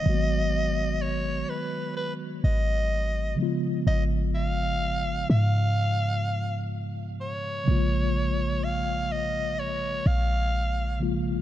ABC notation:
X:1
M:4/4
L:1/8
Q:"Swing 16ths" 1/4=63
K:Dbmix
V:1 name="Soprano saxophone"
e2 d c c e2 z | e f2 f3 z d- | d2 f e d f2 z |]
V:2 name="Tine electric piano" clef=bass
[E,G,A,B,CG]6- [E,G,A,B,CG] [D,F,A,CF]- | [D,F,A,CF]6- [D,F,A,CF] z | [=C,D,F,A,B,F]6- [C,D,F,A,B,F] [D,F,A,B,F] |]
V:3 name="808-style bass" clef=bass
A,,,3 z2 A,,,2 z | A,,,3 A,,4- A,, | B,,,4- B,,, B,,,3 |]